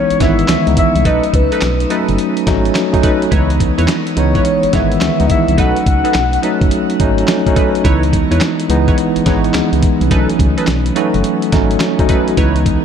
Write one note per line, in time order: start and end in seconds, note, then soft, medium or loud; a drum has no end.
0.00 0.20 E3 medium
0.00 0.20 G#3 medium
0.00 0.21 B3 medium
0.00 0.68 D#4 loud
0.00 0.17 C#5 loud
0.10 0.15 G#1 soft
0.10 closed hi-hat medium
0.20 0.44 G#1 medium
0.20 0.62 D#3 medium
0.20 0.61 E3 medium
0.20 0.62 G#3 medium
0.20 0.62 B3 medium
0.20 0.39 E4 medium
0.20 0.39 B4 medium
0.20 0.39 C#5 medium
0.20 0.74 E5 loud
0.20 kick medium
0.20 snare medium
0.20 closed hi-hat medium
0.39 closed hi-hat soft
0.48 0.56 C#2 medium
0.48 snare loud
0.48 clap medium
0.48 closed hi-hat medium
0.67 0.75 C#2 medium
0.67 1.02 E3 medium
0.67 1.03 G#3 medium
0.67 1.03 B3 medium
0.67 1.03 D#4 medium
0.67 closed hi-hat soft
0.77 1.04 E5 loud
0.77 kick medium
0.77 closed hi-hat medium
0.95 1.04 C2 loud
0.95 closed hi-hat soft
1.05 1.21 B1 loud
1.05 1.84 F#3 medium
1.05 1.85 A3 medium
1.05 1.85 C#4 medium
1.05 1.23 D#4 medium
1.05 1.85 D#4 medium
1.05 1.24 A4 medium
1.05 1.24 B4 loud
1.05 1.37 D#5 loud
1.05 kick loud
1.05 closed hi-hat medium
1.24 closed hi-hat soft
1.34 1.49 C#2 medium
1.34 1.91 B4 medium
1.34 kick medium
1.34 closed hi-hat medium
1.52 1.62 D#4 medium
1.52 1.62 A4 medium
1.52 1.62 B4 medium
1.52 closed hi-hat medium
1.61 1.86 B1 medium
1.61 snare loud
1.61 clap medium
1.61 closed hi-hat medium
1.80 closed hi-hat medium
1.90 2.43 F#3 medium
1.90 2.43 A3 medium
1.90 2.43 C#4 medium
1.90 2.09 D#4 medium
1.90 2.43 D#4 medium
1.90 2.09 A4 medium
1.90 2.09 B4 medium
1.90 closed hi-hat medium
2.09 2.17 F#1 loud
2.09 closed hi-hat soft
2.18 closed hi-hat medium
2.37 closed hi-hat soft
2.47 2.71 G#1 loud
2.47 2.88 F#3 loud
2.47 2.88 A3 medium
2.47 2.88 C#4 medium
2.47 2.89 D#4 loud
2.47 kick medium
2.47 snare medium
2.47 closed hi-hat medium
2.65 closed hi-hat soft
2.75 snare loud
2.75 clap medium
2.75 closed hi-hat medium
2.93 3.29 F#3 loud
2.93 3.29 A3 medium
2.93 3.29 C#4 medium
2.93 3.29 D#4 loud
2.93 kick medium
2.93 closed hi-hat soft
3.03 3.22 D#4 medium
3.03 3.22 A4 medium
3.03 3.22 B4 medium
3.03 kick loud
3.03 closed hi-hat medium
3.22 closed hi-hat soft
3.31 3.71 C#2 loud
3.31 4.11 E3 medium
3.31 4.11 G#3 medium
3.31 4.11 B3 medium
3.31 4.11 D#4 medium
3.31 3.50 E4 medium
3.31 3.50 B4 medium
3.31 3.50 C#5 loud
3.31 kick loud
3.31 closed hi-hat medium
3.50 closed hi-hat medium
3.60 kick loud
3.60 closed hi-hat medium
3.78 3.87 E2 loud
3.78 3.88 E4 medium
3.78 3.88 B4 medium
3.78 3.88 C#5 medium
3.78 closed hi-hat medium
3.88 snare loud
3.88 clap medium
3.88 closed hi-hat medium
4.07 closed hi-hat medium
4.16 4.40 C#2 loud
4.16 4.69 E3 medium
4.16 4.69 G#3 medium
4.16 4.70 B3 medium
4.16 4.70 D#4 loud
4.16 4.77 C#5 medium
4.16 closed hi-hat medium
4.35 4.45 E4 medium
4.35 4.45 B4 medium
4.35 4.45 C#5 medium
4.35 kick medium
4.35 closed hi-hat soft
4.45 closed hi-hat medium
4.63 4.68 G#1 soft
4.63 closed hi-hat soft
4.73 4.97 G#1 medium
4.73 5.15 D#3 medium
4.73 5.14 E3 medium
4.73 5.15 G#3 medium
4.73 5.15 B3 medium
4.73 4.91 E4 medium
4.73 4.92 B4 medium
4.73 4.92 C#5 medium
4.73 5.26 E5 loud
4.73 kick medium
4.73 snare medium
4.73 closed hi-hat medium
4.92 closed hi-hat soft
5.01 5.09 C#2 medium
5.01 snare loud
5.01 clap medium
5.01 closed hi-hat medium
5.20 5.28 C#2 loud
5.20 5.55 E3 medium
5.20 5.55 G#3 medium
5.20 5.55 B3 medium
5.20 5.56 D#4 medium
5.20 closed hi-hat soft
5.26 5.33 D#5 medium
5.26 kick medium
5.26 closed hi-hat medium
5.31 5.61 E5 loud
5.48 5.57 C2 loud
5.48 closed hi-hat soft
5.58 5.73 B1 loud
5.58 6.37 F#3 medium
5.58 6.37 A3 medium
5.58 6.37 C#4 medium
5.58 5.76 D#4 medium
5.58 6.38 D#4 medium
5.58 5.76 A4 medium
5.58 5.76 B4 loud
5.58 5.87 F#5 loud
5.58 kick loud
5.58 closed hi-hat medium
5.76 closed hi-hat soft
5.86 6.02 C#2 medium
5.86 6.40 F#5 loud
5.86 kick loud
5.86 closed hi-hat medium
6.04 6.14 D#4 medium
6.04 6.15 A4 medium
6.04 6.15 B4 medium
6.04 closed hi-hat medium
6.14 6.38 B1 medium
6.14 snare loud
6.14 clap medium
6.14 closed hi-hat medium
6.33 closed hi-hat medium
6.42 6.96 F#3 medium
6.42 6.96 A3 medium
6.42 6.96 C#4 medium
6.42 6.61 D#4 medium
6.42 6.96 D#4 loud
6.42 6.61 A4 medium
6.42 6.61 B4 medium
6.42 closed hi-hat medium
6.61 6.70 F#1 medium
6.61 kick medium
6.61 closed hi-hat soft
6.71 closed hi-hat medium
6.90 closed hi-hat soft
6.99 7.23 G#1 loud
6.99 7.41 F#3 loud
6.99 7.41 A3 medium
6.99 7.41 C#4 medium
6.99 7.41 D#4 loud
6.99 kick medium
6.99 closed hi-hat medium
7.18 closed hi-hat soft
7.27 snare loud
7.27 clap medium
7.27 closed hi-hat medium
7.46 7.82 F#3 medium
7.46 7.82 A3 medium
7.46 7.82 C#4 medium
7.46 7.82 D#4 loud
7.46 kick medium
7.46 closed hi-hat soft
7.56 7.74 D#4 medium
7.56 7.74 A4 medium
7.56 7.75 B4 medium
7.56 kick loud
7.56 closed hi-hat medium
7.75 closed hi-hat soft
7.84 8.23 C#2 loud
7.84 8.64 E3 medium
7.84 8.64 G#3 medium
7.84 8.64 B3 medium
7.84 8.64 D#4 medium
7.84 8.03 E4 medium
7.84 8.03 B4 medium
7.84 8.03 C#5 loud
7.84 kick loud
7.84 closed hi-hat medium
8.03 closed hi-hat soft
8.13 kick medium
8.13 closed hi-hat medium
8.31 8.39 E2 loud
8.31 8.41 E4 medium
8.31 8.41 B4 medium
8.31 8.41 C#5 medium
8.31 closed hi-hat medium
8.40 snare loud
8.40 clap medium
8.40 closed hi-hat medium
8.60 closed hi-hat medium
8.69 8.93 C#2 medium
8.69 9.22 E3 loud
8.69 9.22 G#3 loud
8.69 9.22 B3 loud
8.69 9.23 D#4 loud
8.69 closed hi-hat medium
8.88 8.98 E4 medium
8.88 8.98 B4 medium
8.88 8.98 C#5 medium
8.88 kick loud
8.88 closed hi-hat soft
8.98 closed hi-hat medium
9.16 9.20 G#1 soft
9.16 closed hi-hat soft
9.26 9.50 G#1 medium
9.26 9.54 E3 loud
9.26 9.55 G#3 medium
9.26 9.54 B3 medium
9.26 9.55 D#4 loud
9.26 9.44 E4 medium
9.26 9.45 B4 medium
9.26 9.45 C#5 medium
9.26 kick medium
9.26 snare medium
9.26 closed hi-hat medium
9.44 closed hi-hat soft
9.53 9.62 C#2 medium
9.53 9.72 B3 medium
9.53 9.72 G#4 medium
9.53 snare loud
9.53 clap medium
9.53 closed hi-hat medium
9.73 9.81 C#2 medium
9.73 10.00 G#3 medium
9.73 10.00 E4 medium
9.73 closed hi-hat soft
9.83 kick loud
9.83 closed hi-hat medium
10.01 10.09 C2 loud
10.01 10.29 E3 medium
10.01 10.11 C#4 medium
10.01 closed hi-hat soft
10.11 10.26 B1 loud
10.11 10.90 F#3 medium
10.11 10.90 A3 medium
10.11 10.90 C#4 medium
10.11 10.20 D4 medium
10.11 10.29 D#4 loud
10.11 10.29 A4 medium
10.11 10.29 B4 loud
10.11 kick loud
10.11 closed hi-hat medium
10.19 10.94 D#4 medium
10.29 closed hi-hat medium
10.39 10.55 C#2 medium
10.39 kick loud
10.39 closed hi-hat medium
10.57 10.67 D#4 medium
10.57 10.68 A4 medium
10.57 10.68 B4 medium
10.57 closed hi-hat medium
10.67 10.91 B1 medium
10.67 snare loud
10.67 clap medium
10.67 closed hi-hat medium
10.86 closed hi-hat medium
10.95 11.49 F#3 loud
10.95 11.49 A3 loud
10.95 11.49 C#4 medium
10.95 11.14 D#4 medium
10.95 11.49 F#4 loud
10.95 11.14 A4 medium
10.95 11.14 B4 medium
10.95 closed hi-hat medium
11.14 11.23 F#1 medium
11.14 closed hi-hat soft
11.24 closed hi-hat medium
11.42 closed hi-hat soft
11.52 11.76 G#1 medium
11.52 11.94 F#3 medium
11.52 11.94 A3 medium
11.52 11.94 C#4 medium
11.52 11.94 D#4 loud
11.52 kick medium
11.52 snare medium
11.52 closed hi-hat medium
11.71 closed hi-hat soft
11.80 snare loud
11.80 clap medium
11.80 closed hi-hat medium
11.99 12.34 F#3 medium
11.99 12.35 A3 medium
11.99 12.35 C#4 medium
11.99 12.35 D#4 loud
11.99 kick medium
11.99 closed hi-hat soft
12.09 12.27 D#4 medium
12.09 12.27 A4 medium
12.09 12.28 B4 medium
12.09 kick medium
12.09 closed hi-hat medium
12.28 closed hi-hat soft
12.37 12.76 C#2 loud
12.37 12.85 E3 medium
12.37 12.85 G#3 medium
12.37 12.85 B3 medium
12.37 12.85 D#4 loud
12.37 12.56 E4 medium
12.37 12.56 B4 medium
12.37 12.56 C#5 loud
12.37 kick loud
12.37 closed hi-hat medium
12.56 closed hi-hat soft
12.66 kick loud
12.66 closed hi-hat medium